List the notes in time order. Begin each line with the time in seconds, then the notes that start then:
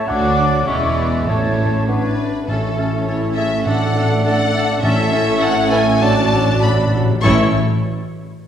Already playing: A3 C#5
0.07 D2 F#3 A3 D4 F#4 A4 D5 F#5 D6
0.67 E1 E2 G#3 C#4 E4 G#4 D5 E5 C#6
0.97 B3 B5
1.26 A1 A2 A3 E4 A4 C#5 A5
1.87 B3 D4 B4
2.19 A3
2.48 A1 A2 A3 C#4 E4 A4 C#5
2.78 A3 C#4 A4
3.06 A3 C#4 E4 A4 C#5
3.36 A3 C#4 G#4 A4 E5
3.65 A2 A3 D4 A4 D5 F#5
3.95 A3 D4 A4
4.24 A3 D4 A4 F#5
4.54 A3 D4 A4
4.82 A1 A2 A3 C#4 E4 A4 C#5 E5
5.12 A3 C#4 A4
5.41 A3 C#4 A4 F#5
5.70 A3 C#4 A4 B4 G#5
6.00 A2 F#3 D4 F#4 A4 D5 A5
6.09 A2
6.24 A2
6.31 A2 F#3 D4 A4
6.40 A2
6.48 A2
6.55 A2
6.61 A2 F#3 D4 A4 D5 B5
6.71 A2
6.79 A2
6.87 A2
6.93 A2 F#3 D4 A4
7.03 A2
7.10 A2
7.23 A1 A2 E3 A3 C#4 E4 A4 C#5 C#6